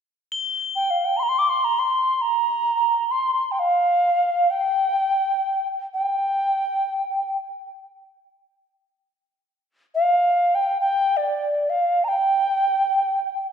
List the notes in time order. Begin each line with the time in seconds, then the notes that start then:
0.32 G7
0.76 G5
0.90 F5
1.05 G5
1.17 A#5 C6
1.23 A#5
1.29 C6
1.38 D6
1.49 C6
1.64 A#5
1.79 C6
2.21 A#5
3.11 C6
3.51 G5
3.59 F5
4.50 G5
5.94 G5
9.95 F5
10.55 G5
10.81 G5
11.17 D5
11.69 F5
12.04 A#5
12.08 G5